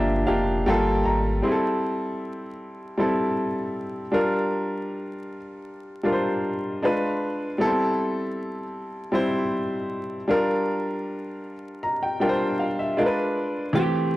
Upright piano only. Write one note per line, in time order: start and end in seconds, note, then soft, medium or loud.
0.00 0.15 F3 medium
0.00 0.15 A#3 medium
0.00 0.16 D4 medium
0.00 0.16 G4 medium
0.00 0.68 D5 medium
0.00 0.26 E5 medium
0.25 0.65 F3 medium
0.25 0.65 A#3 medium
0.25 0.66 D4 medium
0.25 0.66 G4 medium
0.25 0.63 F5 medium
0.66 1.29 G3 loud
0.66 1.30 A#3 medium
0.66 1.30 F4 medium
0.66 1.31 A4 loud
0.66 1.03 G5 medium
1.05 1.41 A#5 medium
1.42 2.45 G3 medium
1.42 2.46 C4 medium
1.42 2.46 E4 medium
1.42 1.51 G#4 medium
1.52 2.50 A4 medium
2.98 4.00 G3 medium
2.98 4.00 C4 medium
2.98 4.01 E4 medium
2.98 4.01 A4 medium
4.12 5.36 G3 medium
4.12 5.36 D4 medium
4.12 5.37 F4 medium
4.12 5.37 A#4 medium
6.03 6.81 G3 medium
6.03 6.81 D4 medium
6.03 6.82 F4 medium
6.03 6.13 A#4 medium
6.12 6.85 C5 medium
6.82 7.45 G#3 medium
6.82 7.46 D4 medium
6.82 7.46 F4 medium
6.82 7.47 B4 medium
7.58 8.61 G3 medium
7.58 7.66 B3 medium
7.58 8.62 E4 medium
7.58 8.62 A4 loud
7.66 8.65 C4 medium
9.12 10.15 G3 medium
9.12 10.15 C4 medium
9.12 10.16 E4 medium
9.12 10.16 C5 medium
10.28 11.52 G3 medium
10.28 11.52 D4 medium
10.28 11.53 F4 medium
10.28 11.53 A#4 medium
11.83 12.02 A#5 medium
12.03 12.19 G5 medium
12.20 12.97 G3 medium
12.20 12.96 D4 medium
12.20 12.97 F4 medium
12.20 12.29 A#4 medium
12.20 12.57 G5 medium
12.29 13.02 C5 medium
12.59 12.79 F5 medium
12.79 12.95 E5 medium
12.97 13.60 G#3 medium
12.97 13.61 D4 medium
12.97 13.61 F4 medium
12.97 13.06 A#4 medium
12.97 13.71 D5 medium
13.06 13.65 B4 medium
13.73 14.17 E3 medium
13.73 14.17 A3 medium
13.73 14.17 C4 medium
13.73 14.17 G4 medium